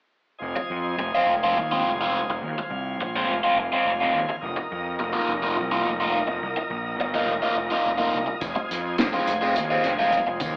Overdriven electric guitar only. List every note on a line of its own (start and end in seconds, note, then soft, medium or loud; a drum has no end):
0.56 muted overdriven electric guitar stroke soft
0.99 muted overdriven electric guitar stroke soft
1.15 1.33 F3 medium
1.15 1.33 G#3 medium
1.15 1.33 C4 medium
1.15 1.33 F4 medium
1.43 1.57 F3 medium
1.43 1.57 G#3 medium
1.43 1.57 C4 medium
1.43 1.57 F4 medium
1.59 muted overdriven electric guitar stroke soft
1.71 1.90 F3 medium
1.71 1.90 G#3 medium
1.71 1.90 C4 medium
1.71 1.90 F4 medium
2.01 2.19 F3 medium
2.01 2.19 G#3 medium
2.01 2.19 C4 medium
2.01 2.19 F4 medium
2.30 muted overdriven electric guitar stroke medium
2.59 muted overdriven electric guitar stroke medium
3.01 muted overdriven electric guitar stroke soft
3.16 3.34 F3 medium
3.16 3.34 G#3 medium
3.16 3.33 C4 medium
3.16 3.33 F4 medium
3.43 3.57 F3 medium
3.43 3.58 G#3 medium
3.43 3.57 C4 medium
3.43 3.57 F4 medium
3.59 muted overdriven electric guitar stroke soft
3.72 3.91 F3 medium
3.72 3.90 G#3 medium
3.72 3.90 C4 medium
3.72 3.90 F4 medium
4.01 4.19 F3 medium
4.01 4.19 G#3 medium
4.01 4.19 C4 medium
4.01 4.18 F4 medium
4.29 muted overdriven electric guitar stroke soft
4.57 muted overdriven electric guitar stroke medium
5.00 muted overdriven electric guitar stroke soft
5.13 5.32 F3 medium
5.13 5.32 A#3 medium
5.13 5.32 D#4 medium
5.13 5.32 F4 medium
5.42 5.56 F3 medium
5.42 5.56 A#3 medium
5.42 5.56 D#4 medium
5.42 5.56 F4 medium
5.57 muted overdriven electric guitar stroke soft
5.72 5.90 F3 medium
5.72 5.90 A#3 medium
5.72 5.90 D#4 medium
5.72 5.90 F4 medium
6.00 6.19 F3 medium
6.00 6.19 A#3 medium
6.00 6.18 D#4 medium
6.00 6.18 F4 medium
6.28 muted overdriven electric guitar stroke soft
6.57 muted overdriven electric guitar stroke medium
7.00 muted overdriven electric guitar stroke soft
7.14 7.33 F3 medium
7.14 7.33 A#3 medium
7.14 7.33 D#4 medium
7.14 7.32 F4 medium
7.42 7.56 F3 medium
7.42 7.56 A#3 medium
7.42 7.56 D#4 medium
7.42 7.56 F4 medium
7.57 muted overdriven electric guitar stroke soft
7.71 7.90 F3 medium
7.71 7.90 A#3 medium
7.71 7.90 D#4 medium
7.71 7.89 F4 medium
7.98 8.18 F3 medium
7.98 8.18 A#3 medium
7.98 8.18 D#4 medium
7.98 8.17 F4 medium
8.27 muted overdriven electric guitar stroke soft
8.56 muted overdriven electric guitar stroke soft
8.99 muted overdriven electric guitar stroke soft
9.13 9.33 F3 medium
9.13 9.32 G#3 medium
9.13 9.32 C4 medium
9.13 9.32 F4 medium
9.41 9.56 F3 medium
9.41 9.56 G#3 medium
9.41 9.56 C4 medium
9.41 9.56 F4 medium
9.57 muted overdriven electric guitar stroke soft
9.70 9.90 F3 medium
9.70 9.90 G#3 medium
9.70 9.90 C4 medium
9.70 9.89 F4 medium
9.99 10.18 F3 medium
9.99 10.18 G#3 medium
9.99 10.18 C4 medium
9.99 10.18 F4 medium
10.26 muted overdriven electric guitar stroke soft